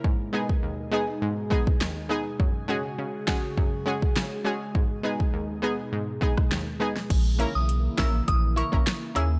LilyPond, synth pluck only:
\new Staff \with { instrumentName = "Synth pluck" } { \time 4/4 \key gis \minor \tempo 4 = 102 << { r8 <gis b dis' gis'>16 r8. <gis b dis' gis'>16 r8. <gis b dis' gis'>16 r8. <gis b dis' gis'>16 r16 | r8 <gis cis' fis' gis'>16 r8. <gis cis' fis' gis'>16 r8. <gis cis' fis' gis'>16 r8. <gis cis' fis' gis'>16 r16 | r8 <gis b dis' gis'>16 r8. <gis b dis' gis'>16 r8. <gis b dis' gis'>16 r8. <gis b dis' gis'>16 r16 | r8 <ais cis' e' ais'>16 r8. <ais cis' e' ais'>16 r8. <e' ais'>16 <ais cis' e' ais'>16 r8 <ais cis' e' gis'>16 r16 | } \\ { gis,4 dis,4 gis,4 dis,4 | fis,4 cis4 fis,4 cis4 | gis,4 dis,4 gis,4 dis,4 | r1 | } >> }